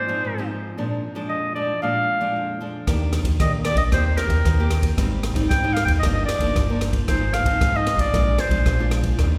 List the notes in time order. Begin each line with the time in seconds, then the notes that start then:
Already playing: G#2 C5
0.08 F3 C4 D#4
0.24 G#2
0.38 F3 C4 D#4
0.77 A#2 F3 G#3 D4
1.15 F3 G#3 D4
1.29 F2 D#5
1.55 F3 G#3 D4 D5
1.82 A#2 F3 G#3 D4 F5
2.21 F3 G#3 D4
2.36 F2
2.61 F3 G#3 D4
2.87 D#2 D#3 A#3 D4 G4, kick, cross-stick, ride
3.13 cross-stick, ride
3.23 D#2, kick, ride
3.40 A#2 D#3 A#3 D4 G4 D#5, kick, cross-stick, ride
3.64 A#3 D4 G4 D5, cross-stick, ride
3.75 A#1 D#5, kick, ride
3.92 D#2 D#3 A#3 C4 G4 C5, kick, cross-stick, ride
4.06 C5
4.17 A#3 C4 G4 A#4, cross-stick, ride
4.28 D#2, kick, ride
4.45 D#2 D#3, kick, cross-stick, ride
4.59 A#3 C4 G4
4.70 cross-stick, ride
4.82 kick, ride
4.97 G#1 G#2 G3 C4 D#4, kick, cross-stick, ride
5.23 cross-stick, ride
5.33 G#1 G3 C4 D#4, kick, ride
5.49 G#2 D#3 G5, kick, cross-stick, ride
5.64 G3 C4 D#4
5.73 F5, cross-stick, ride
5.85 D#2 G5, kick, ride
5.99 G1 G2 F3 A#3 D#5, kick, cross-stick, ride
6.04 D4
6.14 D#5
6.25 D5, cross-stick, ride
6.38 G1 F3 A#3 D4, kick, ride
6.55 G1 G2, kick, cross-stick, ride
6.70 F3 A#3 D4
6.81 cross-stick, ride
6.93 kick, ride
7.08 G#1 G#2 F3 C4 D#4 C5, kick, cross-stick, ride
7.34 F5, cross-stick, ride
7.43 G#1 F3 C4 D#4, kick, ride
7.61 G#2, kick, cross-stick, ride
7.75 F3 C4 D#4 D#5
7.87 cross-stick, ride
7.96 A1, kick, ride
8.00 D5
8.14 A#1 A#2 G#3 D4 F4, kick, cross-stick, ride
8.38 C5, cross-stick, ride
8.49 A#1 G#3 D4 F4, kick, ride
8.65 A#1 F3, kick, cross-stick, ride
8.79 G#3 D4 F4
8.91 cross-stick, ride
9.03 kick, ride
9.18 D#2 D#3 G3 D4 F4, kick, cross-stick, ride